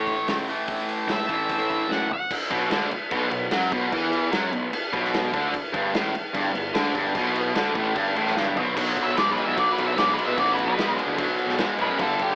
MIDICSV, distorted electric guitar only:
0, 0, Header, 1, 3, 480
1, 0, Start_track
1, 0, Key_signature, 2, "minor"
1, 0, Tempo, 404313
1, 808, Time_signature, 4, 2, 24, 8
1, 14662, End_track
2, 0, Start_track
2, 0, Title_t, "Distorted electric guitar"
2, 0, Program_c, 0, 30
2, 0, Note_on_c, 0, 45, 65
2, 0, Note_on_c, 0, 52, 80
2, 0, Note_on_c, 0, 57, 76
2, 534, Note_off_c, 0, 45, 0
2, 545, Note_off_c, 0, 57, 0
2, 549, Note_on_c, 0, 45, 79
2, 558, Note_off_c, 0, 52, 0
2, 577, Note_on_c, 0, 52, 93
2, 599, Note_on_c, 0, 57, 89
2, 1496, Note_off_c, 0, 57, 0
2, 1508, Note_off_c, 0, 45, 0
2, 1511, Note_on_c, 0, 57, 80
2, 1519, Note_off_c, 0, 52, 0
2, 1533, Note_on_c, 0, 52, 74
2, 1559, Note_on_c, 0, 45, 68
2, 2470, Note_off_c, 0, 57, 0
2, 2481, Note_off_c, 0, 52, 0
2, 2495, Note_off_c, 0, 45, 0
2, 2976, Note_on_c, 0, 47, 101
2, 3209, Note_off_c, 0, 47, 0
2, 3222, Note_on_c, 0, 50, 101
2, 3452, Note_off_c, 0, 50, 0
2, 3701, Note_on_c, 0, 47, 109
2, 3920, Note_off_c, 0, 47, 0
2, 3934, Note_on_c, 0, 47, 74
2, 4128, Note_off_c, 0, 47, 0
2, 4178, Note_on_c, 0, 54, 97
2, 4410, Note_off_c, 0, 54, 0
2, 4425, Note_on_c, 0, 47, 104
2, 4654, Note_off_c, 0, 47, 0
2, 4668, Note_on_c, 0, 52, 98
2, 5126, Note_off_c, 0, 52, 0
2, 5130, Note_on_c, 0, 54, 103
2, 5366, Note_off_c, 0, 54, 0
2, 5376, Note_on_c, 0, 47, 76
2, 5568, Note_off_c, 0, 47, 0
2, 5850, Note_on_c, 0, 47, 98
2, 6321, Note_off_c, 0, 47, 0
2, 6326, Note_on_c, 0, 50, 95
2, 6563, Note_off_c, 0, 50, 0
2, 6800, Note_on_c, 0, 43, 97
2, 7037, Note_on_c, 0, 45, 100
2, 7039, Note_off_c, 0, 43, 0
2, 7277, Note_off_c, 0, 45, 0
2, 7524, Note_on_c, 0, 43, 102
2, 7744, Note_off_c, 0, 43, 0
2, 7758, Note_on_c, 0, 43, 69
2, 7956, Note_off_c, 0, 43, 0
2, 8003, Note_on_c, 0, 50, 94
2, 8239, Note_off_c, 0, 50, 0
2, 8250, Note_on_c, 0, 43, 94
2, 8481, Note_on_c, 0, 47, 108
2, 8482, Note_off_c, 0, 43, 0
2, 8957, Note_off_c, 0, 47, 0
2, 8964, Note_on_c, 0, 50, 102
2, 9197, Note_off_c, 0, 50, 0
2, 9202, Note_on_c, 0, 45, 102
2, 9427, Note_on_c, 0, 43, 104
2, 9437, Note_off_c, 0, 45, 0
2, 9669, Note_off_c, 0, 43, 0
2, 9683, Note_on_c, 0, 45, 92
2, 9917, Note_off_c, 0, 45, 0
2, 9920, Note_on_c, 0, 43, 101
2, 10156, Note_off_c, 0, 43, 0
2, 10160, Note_on_c, 0, 47, 97
2, 10377, Note_off_c, 0, 47, 0
2, 10391, Note_on_c, 0, 47, 85
2, 10402, Note_on_c, 0, 54, 83
2, 10830, Note_off_c, 0, 47, 0
2, 10835, Note_off_c, 0, 54, 0
2, 10882, Note_on_c, 0, 47, 75
2, 10890, Note_on_c, 0, 56, 80
2, 11099, Note_off_c, 0, 47, 0
2, 11103, Note_off_c, 0, 56, 0
2, 11116, Note_on_c, 0, 47, 78
2, 11121, Note_on_c, 0, 56, 87
2, 11336, Note_off_c, 0, 47, 0
2, 11339, Note_off_c, 0, 56, 0
2, 11360, Note_on_c, 0, 47, 80
2, 11360, Note_on_c, 0, 54, 96
2, 11794, Note_off_c, 0, 47, 0
2, 11794, Note_off_c, 0, 54, 0
2, 11837, Note_on_c, 0, 47, 85
2, 11840, Note_on_c, 0, 56, 79
2, 12052, Note_off_c, 0, 47, 0
2, 12058, Note_off_c, 0, 56, 0
2, 12067, Note_on_c, 0, 47, 75
2, 12078, Note_on_c, 0, 56, 78
2, 12291, Note_off_c, 0, 47, 0
2, 12297, Note_off_c, 0, 56, 0
2, 12304, Note_on_c, 0, 47, 85
2, 12309, Note_on_c, 0, 54, 85
2, 12746, Note_off_c, 0, 47, 0
2, 12748, Note_off_c, 0, 54, 0
2, 12785, Note_on_c, 0, 47, 83
2, 12796, Note_on_c, 0, 56, 81
2, 13008, Note_off_c, 0, 56, 0
2, 13010, Note_off_c, 0, 47, 0
2, 13023, Note_on_c, 0, 56, 95
2, 13024, Note_on_c, 0, 47, 75
2, 13247, Note_off_c, 0, 47, 0
2, 13249, Note_off_c, 0, 56, 0
2, 13261, Note_on_c, 0, 47, 91
2, 13264, Note_on_c, 0, 54, 93
2, 13704, Note_off_c, 0, 47, 0
2, 13706, Note_off_c, 0, 54, 0
2, 13748, Note_on_c, 0, 47, 72
2, 13755, Note_on_c, 0, 56, 84
2, 13971, Note_off_c, 0, 47, 0
2, 13975, Note_off_c, 0, 56, 0
2, 14001, Note_on_c, 0, 47, 68
2, 14007, Note_on_c, 0, 56, 79
2, 14218, Note_off_c, 0, 47, 0
2, 14221, Note_off_c, 0, 56, 0
2, 14225, Note_on_c, 0, 43, 90
2, 14240, Note_on_c, 0, 50, 94
2, 14662, Note_off_c, 0, 43, 0
2, 14662, Note_off_c, 0, 50, 0
2, 14662, End_track
3, 0, Start_track
3, 0, Title_t, "Muted distorted electric guitar strokes"
3, 3460, Note_on_c, 9, 29, 64
3, 3579, Note_off_c, 9, 29, 0
3, 5617, Note_on_c, 9, 29, 58
3, 5736, Note_off_c, 9, 29, 0
3, 7282, Note_on_c, 9, 29, 63
3, 7401, Note_off_c, 9, 29, 0
3, 14662, End_track
0, 0, End_of_file